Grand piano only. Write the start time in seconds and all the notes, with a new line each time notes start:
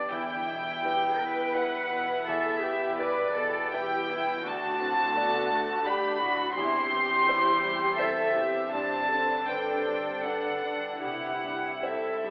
Already playing: D3 B3 D4 G4
0.11 E2
0.47 B2
0.85 E4 B4
1.20 B3
1.55 E4 B4
1.92 B2
2.28 E2
2.63 B3
2.99 E4 B4
3.35 B2
3.73 E4 B4
4.10 B3
4.45 D2
4.80 A2
5.16 F#4 D5
5.51 A3
5.86 D5 F#5
6.21 A2
6.57 E2
6.93 E3
7.29 E4 C5
7.64 G3
7.99 E4 C5
8.35 E3
8.74 G2
9.12 D3
9.49 D4 B4
9.87 G3
10.25 D4 B4
10.63 D3
11.04 C2
11.44 G2
11.83 C4 C5
12.24 G3